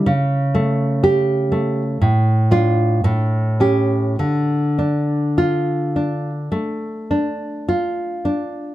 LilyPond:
\new Staff \with { instrumentName = "Nylon-string guitar" } { \time 4/4 \key d \minor \tempo 4 = 53 << { r4 g'4 r8 f'8 r8 g'8 | r4 f'4 r2 | } \\ { cis8 a4 a8 a,8 d'8 a,8 cis'8 | d8 d'4 d'8 a8 d'8 f'8 d'8 | } >> }